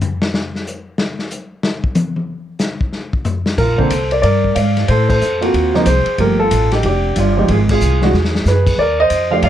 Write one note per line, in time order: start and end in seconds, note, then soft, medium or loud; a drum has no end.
0.01 floor tom loud
0.01 hi-hat pedal medium
0.22 snare medium
0.34 snare loud
0.56 snare soft
0.67 hi-hat pedal medium
0.98 snare loud
1.19 snare soft
1.31 hi-hat pedal medium
1.63 snare medium
1.84 kick medium
1.95 hi-hat pedal medium
1.95 high tom loud
2.16 high tom soft
2.59 snare loud
2.59 hi-hat pedal medium
2.81 kick medium
2.93 snare soft
3.13 kick medium
3.24 floor tom loud
3.24 hi-hat pedal medium
3.46 snare medium
3.58 3.89 A#1 medium
3.58 3.79 F4 medium
3.58 3.77 A#4 medium
3.58 kick medium
3.58 crash medium
3.78 3.89 D3 medium
3.78 3.89 A#3 medium
3.78 3.90 C4 medium
3.78 4.09 A4 medium
3.78 4.12 C5 medium
3.78 kick medium
3.90 4.22 C2 medium
3.90 kick soft
3.90 hi-hat pedal medium
3.90 ride medium
4.11 4.23 A#4 medium
4.11 4.21 D5 medium
4.11 ride soft
4.22 4.55 G2 medium
4.22 4.54 A#4 medium
4.22 4.56 D5 medium
4.22 kick soft
4.22 ride medium
4.44 kick soft
4.55 4.87 G#2 medium
4.55 4.87 D5 medium
4.55 4.89 F5 medium
4.55 kick soft
4.55 hi-hat pedal medium
4.55 ride medium
4.77 snare soft
4.77 ride soft
4.88 5.20 A2 medium
4.88 5.09 A4 medium
4.88 5.07 C5 medium
4.88 kick soft
4.88 ride medium
5.09 5.51 A4 medium
5.09 5.85 C5 medium
5.09 kick medium
5.09 crash medium
5.21 5.52 F2 medium
5.21 hi-hat pedal medium
5.41 5.72 A#3 medium
5.41 5.72 C4 medium
5.41 5.72 F4 medium
5.41 5.72 F#4 medium
5.41 ride soft
5.54 5.85 D#2 medium
5.54 kick soft
5.54 ride medium
5.74 5.85 F3 medium
5.74 5.85 A#3 medium
5.74 5.85 C4 medium
5.74 5.85 D#4 medium
5.74 snare soft
5.86 6.05 C2 medium
5.86 6.17 G#4 medium
5.86 6.20 C5 medium
5.86 kick soft
5.86 hi-hat pedal medium
5.86 ride medium
6.06 muted upright bass stroke soft
6.06 ride soft
6.18 6.50 G1 medium
6.18 6.37 F3 medium
6.18 6.37 A3 soft
6.18 6.37 A#3 soft
6.18 6.38 G4 medium
6.18 6.39 A#4 medium
6.18 kick soft
6.18 ride medium
6.39 6.71 F4 medium
6.39 6.73 A4 medium
6.51 6.83 A1 medium
6.51 kick soft
6.51 hi-hat pedal medium
6.51 ride medium
6.72 6.84 D#4 medium
6.72 6.84 G4 medium
6.72 snare soft
6.72 ride soft
6.83 7.15 F1 medium
6.83 7.18 G4 medium
6.83 kick soft
6.83 ride medium
6.89 7.16 D4 medium
7.16 7.47 G1 medium
7.16 7.47 F4 medium
7.16 kick soft
7.16 hi-hat pedal medium
7.16 ride medium
7.20 7.48 D4 medium
7.37 7.47 F3 medium
7.37 7.48 G#3 medium
7.37 7.48 D#4 medium
7.37 7.48 G4 medium
7.48 7.80 G#1 medium
7.48 7.56 G#4 medium
7.48 kick soft
7.48 ride medium
7.54 7.59 F4 medium
7.69 8.12 F4 medium
7.69 8.48 G#4 medium
7.69 kick medium
7.69 crash medium
7.80 8.13 C2 medium
7.80 hi-hat pedal medium
8.01 8.12 E3 medium
8.01 8.12 G#3 medium
8.01 8.13 D4 medium
8.01 8.13 F#4 medium
8.01 snare medium
8.13 8.45 E2 medium
8.13 snare soft
8.25 snare medium
8.35 snare medium
8.45 8.77 F#2 medium
8.45 8.80 B4 medium
8.45 snare medium
8.45 hi-hat pedal medium
8.50 8.78 G#4 medium
8.67 kick medium
8.67 crash medium
8.78 9.10 D#2 medium
8.78 8.99 A#4 medium
8.78 8.98 D5 medium
8.78 kick soft
9.00 9.31 C5 medium
9.00 9.33 D#5 loud
9.10 9.42 F2 medium
9.10 kick soft
9.10 hi-hat pedal medium
9.10 ride medium
9.31 9.42 F3 medium
9.31 9.42 A3 medium
9.31 9.42 D4 medium
9.31 9.43 G4 medium
9.31 9.38 D5 medium
9.31 9.37 F5 loud
9.42 9.49 G2 medium
9.42 9.49 D5 medium
9.42 9.49 F5 loud
9.42 kick soft
9.42 ride medium